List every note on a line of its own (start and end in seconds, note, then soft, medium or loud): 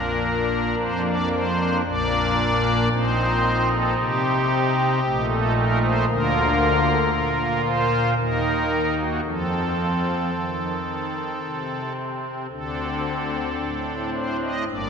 0.00 0.75 A#1 medium
0.00 0.75 A#2 medium
0.00 1.82 A#3 soft
0.00 1.82 D4 soft
0.00 0.75 A#4 loud
0.78 1.82 F2 medium
0.78 1.01 C5 loud
1.06 1.28 D5 loud
1.32 1.77 C5 loud
1.85 2.88 A#1 medium
1.85 2.89 A#2 medium
1.85 2.88 A#3 medium
1.85 2.88 D4 medium
1.85 2.88 D5 loud
2.91 3.95 A#1 medium
2.91 3.95 A#2 medium
2.91 5.00 C4 medium
2.91 5.00 D#4 soft
2.91 3.69 C5 loud
3.71 3.93 A4 loud
3.98 5.00 C3 medium
3.98 5.26 G4 loud
5.04 6.06 A#1 medium
5.04 6.06 A#2 medium
5.04 6.06 A3 medium
5.04 6.06 D#4 medium
5.31 5.53 A4 loud
5.57 5.79 A#4 loud
5.82 6.05 C5 loud
6.08 7.10 D2 medium
6.08 7.10 D3 medium
6.08 8.14 A#3 medium
6.08 8.14 F4 medium
6.08 7.62 A#4 loud
7.12 8.14 A#2 medium
7.66 8.10 C5 loud
8.17 9.20 D#2 medium
8.17 9.20 D#3 medium
8.17 9.20 A#3 medium
8.17 9.20 D#4 medium
8.17 8.94 A#4 loud
8.98 9.21 F#4 medium
9.25 10.30 F2 medium
9.25 10.30 F3 medium
9.25 12.47 C4 soft
9.25 11.92 A4 medium
10.34 11.39 D#3 medium
11.42 12.47 C3 medium
12.50 13.56 D2 medium
12.50 13.56 D3 medium
12.50 14.64 C4 soft
12.50 14.64 D4 soft
12.50 14.10 A4 medium
13.60 14.65 A2 medium
14.14 14.37 C5 medium
14.42 14.64 D#5 medium
14.68 14.89 G1 medium
14.68 14.89 G2 medium
14.68 14.89 A#3 soft
14.68 14.89 D4 soft
14.68 14.89 D5 loud